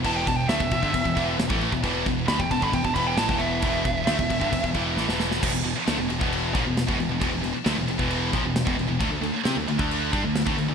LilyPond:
<<
  \new Staff \with { instrumentName = "Lead electric guitar" } { \time 4/4 \key e \minor \tempo 4 = 134 a''16 g''16 a''16 g''16 e''2 r4 | r4 b''16 g''16 a''16 b''16 g''16 a''16 b''16 g''16 a''8 e''8~ | e''2~ e''8 r4. | r1 |
r1 | r1 | }
  \new Staff \with { instrumentName = "Distorted electric guitar" } { \clef bass \time 4/4 \key e \minor <e, b, e>8 <e, b,>8 <d a>16 <e, b,>16 <e, b,>16 <g, d>16 <e, b,>16 <e, b,>16 <e, b, e>8 <e, b,>16 <a, e a>8 <e, b,>16 | <e, b, e>8 <e, b,>8 <d a>16 <e, b,>16 <e, b,>16 <g, d>16 <e, b,>16 <e, b,>16 <e, b, e>8 <a, e>16 <e, b, e>8. | <e, b, e>8 <e, b,>8 <d a>16 <e, b,>16 <e, b,>16 <g, d>16 <e, b,>16 <e, b,>16 <e, b, e>8 <a, e>16 <e, b, e>8. | <e, b,>16 <e, b,>16 <e, b,>16 r16 <d a>16 <e, b,>16 <e, b,>16 <e, b, e>8. <ais, f>16 <e, b,>8 <e, b,>16 <e, b,>16 <e, b,>16 |
<e, b,>16 <e, b,>16 <e, b,>16 r16 <d a>16 <e, b,>16 <e, b,>16 <e, b, e>8. <ais, f>16 <e, b,>8 <e, b,>16 <e, b,>16 <e, b,>16 | <d a>16 <d a>16 <d a>16 r16 <c' g'>16 <d a>16 <d a>16 <d a d'>8. <g d'>16 <d a>8 <d a>16 <d a>16 <d a>16 | }
  \new Staff \with { instrumentName = "Distorted electric guitar" } { \clef bass \time 4/4 \key e \minor <e, b, e>8 <e, b,>8 <d a>16 <e, b,>16 <e, b,>16 <g, d>16 <e, b,>16 <e, b,>16 <e, b, e>8 <e, b,>16 <a, e a>8 <e, b,>16 | <e, b, e>8 <e, b,>8 <d a>16 <e, b,>16 <e, b,>16 <g, d>16 <e, b,>16 <e, b,>16 <e, b, e>8 <a, e>16 <e, b, e>8. | <e, b, e>8 <e, b,>8 <d a>16 <e, b,>16 <e, b,>16 <g, d>16 <e, b,>16 <e, b,>16 <e, b, e>8 <a, e>16 <e, b, e>8. | <e, b,>16 <e, b,>16 <e, b,>16 r16 <d a>16 <e, b,>16 <e, b,>16 <e, b, e>8. <ais, f>16 <e, b,>8 <e, b,>16 <e, b,>16 <e, b,>16 |
<e, b,>16 <e, b,>16 <e, b,>16 r16 <d a>16 <e, b,>16 <e, b,>16 <e, b, e>8. <ais, f>16 <e, b,>8 <e, b,>16 <e, b,>16 <e, b,>16 | <d a>16 <d a>16 <d a>16 r16 <c' g'>16 <d a>16 <d a>16 <d a d'>8. <g d'>16 <d a>8 <d a>16 <d a>16 <d a>16 | }
  \new Staff \with { instrumentName = "Distorted electric guitar" } { \clef bass \time 4/4 \key e \minor <e, b, e>8 <e, b,>8 <d a>16 <e, b,>16 <e, b,>16 <g, d>16 <e, b,>16 <e, b,>16 <e, b, e>8 <e, b,>16 <a, e a>8 <e, b,>16 | <e, b, e>8 <e, b,>8 <d a>16 <e, b,>16 <e, b,>16 <g, d>16 <e, b,>16 <e, b,>16 <e, b, e>8 <a, e>16 <e, b, e>8. | <e, b, e>8 <e, b,>8 <d a>16 <e, b,>16 <e, b,>16 <g, d>16 <e, b,>16 <e, b,>16 <e, b, e>8 <a, e>16 <e, b, e>8. | <e, b,>16 <e, b,>16 <e, b,>16 r16 <d a>16 <e, b,>16 <e, b,>16 <e, b, e>8. <ais, f>16 <e, b,>8 <e, b,>16 <e, b,>16 <e, b,>16 |
<e, b,>16 <e, b,>16 <e, b,>16 r16 <d a>16 <e, b,>16 <e, b,>16 <e, b, e>8. <ais, f>16 <e, b,>8 <e, b,>16 <e, b,>16 <e, b,>16 | <d a>16 <d a>16 <d a>16 r16 <c' g'>16 <d a>16 <d a>16 <d a d'>8. <g d'>16 <d a>8 <d a>16 <d a>16 <d a>16 | }
  \new Staff \with { instrumentName = "Picked electric bass" } { \clef bass \time 4/4 \key e \minor e,,8 e,,8 d,16 e,,16 e,,16 g,,16 e,,16 e,,16 e,,8 e,,16 a,,8 e,,16 | e,,8 e,,8 d,16 e,,16 e,,16 g,,16 e,,16 e,,16 e,,8 a,,16 e,,8. | e,,8 e,,8 d,16 e,,16 e,,16 g,,16 e,,16 e,,16 e,,8 a,,16 e,,8. | e,,16 e,,16 e,,16 r16 d,16 e,,16 e,,16 e,,8. ais,,16 e,,8 e,,16 e,,16 e,,16 |
e,,16 e,,16 e,,16 r16 d,16 e,,16 e,,16 e,,8. ais,,16 e,,8 e,,16 e,,16 e,,16 | d,16 d,16 d,16 r16 c16 d,16 d,16 d,8. g,16 d,8 d,16 d,16 d,16 | }
  \new DrumStaff \with { instrumentName = "Drums" } \drummode { \time 4/4 <cymc bd>8 <cymc bd>8 <cymc sn>16 bd16 <cymc bd>16 bd16 <cymc bd>16 bd16 <cymc bd>8 <cymc sn>16 bd16 cymc16 bd16 | <cymc bd>8 <cymc bd>8 <cymc sn>16 bd16 <cymc bd>16 bd16 <cymc bd>16 bd16 <cymc bd>8 <cymc sn>16 bd16 cymc8 | <cymc bd>8 <cymc bd>8 <cymc sn>16 bd16 <cymc bd>16 bd16 <cymc bd>16 bd16 <cymc bd>8 sn16 sn16 sn16 sn16 | <cymc bd>8 cymc8 <cymc sn>8 cymc16 bd16 cymc8 <cymc bd>8 <cymc sn>16 bd16 cymc8 |
<cymc bd>8 cymc8 <cymc sn>8 cymc16 bd16 cymc8 <cymc bd>8 <cymc sn>16 bd16 cymc8 | <cymc bd>8 cymc8 <cymc sn>8 cymc16 bd16 cymc8 <cymc bd>8 <cymc sn>16 bd16 cymc8 | }
>>